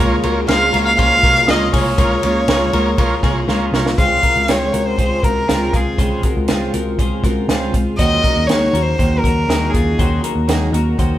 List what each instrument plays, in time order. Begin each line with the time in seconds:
Already playing: analog synth pad C#3 G#3 A#3 F4
0.00 picked electric bass C#2, twelve-string acoustic guitar C#3 G#3 A#3 F4, transistor combo organ F4 A#4 C#5, clean electric guitar A#4 C#5
0.23 picked electric bass C#2, twelve-string acoustic guitar G#3 A#3 F4, transistor combo organ F4 A#4 C#5, clean electric guitar F#4 A#4, ride
0.47 picked electric bass C#2, twelve-string acoustic guitar C#3 G#3 A#3 F4, clean electric guitar F4 G#4, transistor combo organ F4 A#4 C5, violin F5, glockenspiel F6, snare, ride
0.72 picked electric bass C#2, twelve-string acoustic guitar G#3 A#3 F4, transistor combo organ F4 A#4 C#5, clean electric guitar F#4 A#4, ride
0.86 violin F5, glockenspiel F6
0.97 picked electric bass C#2, twelve-string acoustic guitar C#3 G#3 A#3 F4, transistor combo organ F4 A#4 C#5, clean electric guitar G#4 C5, violin F5, glockenspiel F6, kick, ride
1.23 picked electric bass C2, twelve-string acoustic guitar G#3 A#3 F4, transistor combo organ F4 A#4 C#5, clean electric guitar F#4 A#4, kick, snare, ride
1.47 picked electric bass C#2, twelve-string acoustic guitar C#3 G#3 A#3 F4, transistor combo organ F4 A#4 C#5, clean electric guitar F4 G#4, violin D#5, glockenspiel D#6, snare, ride
1.72 picked electric bass C2, twelve-string acoustic guitar G#3 A#3 F4, clean electric guitar F4 G#4, transistor combo organ F4 A#4 C#5, violin C#5, glockenspiel C#6, kick, open hi-hat, ride
1.97 picked electric bass C#2, twelve-string acoustic guitar C#3 G#3 A#3 F4, transistor combo organ F4 A#4 C#5, clean electric guitar F4 A#4, kick, hi-hat pedal, ride
2.23 picked electric bass C#2, twelve-string acoustic guitar G#3 A#3 F4, clean electric guitar C#4 F4, transistor combo organ F4 A#4 C#5, ride
2.48 picked electric bass C#2, twelve-string acoustic guitar C#3 G#3 A#3 F4, clean electric guitar F4 G#4, transistor combo organ F4 A#4 C#5, snare, ride
2.73 picked electric bass C#2, twelve-string acoustic guitar G#3 A#3 F4, transistor combo organ F4 A#4 C#5, clean electric guitar F#4 A#4, ride
2.98 picked electric bass C#2, twelve-string acoustic guitar C#3 G#3 A#3 F4, transistor combo organ F4 A#4 C#5, clean electric guitar F4 A#4, kick, ride
3.22 picked electric bass C2, twelve-string acoustic guitar G#3 A#3 F4, transistor combo organ F4 A#4 C#5, clean electric guitar F4 G#4, kick, snare, ride
3.48 picked electric bass C#2, twelve-string acoustic guitar C#3 G#3 A#3 F4, clean electric guitar C#4 F4, transistor combo organ F4 A#4 C#5, snare
3.72 picked electric bass C2, twelve-string acoustic guitar G#3 A#3 F4, transistor combo organ F4 A#4 C#5, snare
3.86 snare
3.97 picked electric bass C#2, analog synth pad C3 C#3 G#3 F4, twelve-string acoustic guitar C#3 G#3 C4 F4, clean electric guitar G#4 C5, violin F5, kick, closed hi-hat
4.22 twelve-string acoustic guitar G#3 C4 F4, clean electric guitar F#4 A#4, kick, closed hi-hat
4.36 picked electric bass C#2
4.48 picked electric bass C#2, twelve-string acoustic guitar C#3 G#3 C4 F4, clean electric guitar F4 G#4, violin C#5, snare, closed hi-hat
4.73 picked electric bass C#2, twelve-string acoustic guitar G#3 C4 F4, clean electric guitar F#4 A#4, closed hi-hat
4.87 violin C5
4.98 picked electric bass C#2, twelve-string acoustic guitar C#3 G#3 C4 F4, clean electric guitar G#4 C5, kick, closed hi-hat
5.22 picked electric bass C#2, twelve-string acoustic guitar G#3 C4 F4, clean electric guitar F#4 A#4, violin A#4, kick, closed hi-hat
5.47 picked electric bass C#2, twelve-string acoustic guitar C#3 G#3 C4 F4, clean electric guitar F4 G#4, snare, closed hi-hat
5.73 picked electric bass C#2, twelve-string acoustic guitar G#3 C4 F4, clean electric guitar F4 G#4, violin G#4, kick, closed hi-hat
5.98 picked electric bass C#2, twelve-string acoustic guitar C#3 G#3 C4 F4, clean electric guitar G#4 C5, kick, closed hi-hat
6.23 twelve-string acoustic guitar G#3 C4 F4, clean electric guitar F#4 A#4, kick, closed hi-hat
6.37 picked electric bass C#2
6.48 picked electric bass C#2, twelve-string acoustic guitar C#3 G#3 C4 F4, clean electric guitar F4 G#4, snare, closed hi-hat
6.74 picked electric bass C#2, twelve-string acoustic guitar G#3 C4 F4, clean electric guitar F#4 A#4, closed hi-hat
6.98 picked electric bass C#2, twelve-string acoustic guitar C#3 G#3 C4 F4, clean electric guitar G#4 C5, kick, closed hi-hat
7.24 picked electric bass C#2, twelve-string acoustic guitar G#3 C4 F4, clean electric guitar F#4 A#4, kick, snare, closed hi-hat
7.49 picked electric bass C#2, twelve-string acoustic guitar C#3 G#3 C4 F4, clean electric guitar F4 G#4, snare, closed hi-hat
7.74 picked electric bass C#2, twelve-string acoustic guitar G#3 C4 F4, kick, closed hi-hat
7.98 picked electric bass D#2, twelve-string acoustic guitar D#3 A#3 C#4 F#4, analog synth pad F#3 A#3 D#4, clean electric guitar F#4 C5, violin D#5, kick, closed hi-hat
8.24 twelve-string acoustic guitar A#3 C#4 F#4, clean electric guitar F#4 A#4, kick, closed hi-hat
8.36 picked electric bass D#2
8.46 picked electric bass D#2, twelve-string acoustic guitar D#3 A#3 C#4, clean electric guitar D#4 G#4, violin C#5, snare, closed hi-hat
8.51 twelve-string acoustic guitar F#4
8.74 picked electric bass D#2, twelve-string acoustic guitar A#3 C#4 F#4, clean electric guitar F#4 A#4, closed hi-hat
8.83 violin C5
8.99 picked electric bass D#2, twelve-string acoustic guitar D#3 A#3 C#4 F#4, clean electric guitar F#4 C5, kick, closed hi-hat
9.19 violin A#4
9.24 picked electric bass D#2, twelve-string acoustic guitar A#3 C#4 F#4, clean electric guitar F#4 A#4, kick, closed hi-hat
9.49 picked electric bass D#2, twelve-string acoustic guitar D#3 A#3 C#4 F#4, clean electric guitar D#4 G#4, snare, closed hi-hat
9.70 violin G#4
9.74 picked electric bass D#2, twelve-string acoustic guitar A#3 C#4 F#4, clean electric guitar F4 G#4, kick, closed hi-hat
9.99 picked electric bass D#2, twelve-string acoustic guitar D#3 A#3 C#4 F#4, clean electric guitar F#4 C5, kick, closed hi-hat
10.23 twelve-string acoustic guitar A#3 C#4 F#4, clean electric guitar F#4 A#4, closed hi-hat
10.36 picked electric bass D#2
10.47 picked electric bass D#2, twelve-string acoustic guitar D#3 A#3 C#4 F#4, clean electric guitar D#4 G#4, snare, closed hi-hat
10.72 picked electric bass D#2, twelve-string acoustic guitar A#3 C#4 F#4, clean electric guitar F#4 A#4, closed hi-hat
10.97 picked electric bass D#2, twelve-string acoustic guitar D#3 A#3 C#4 F#4, clean electric guitar F#4 C5, kick, closed hi-hat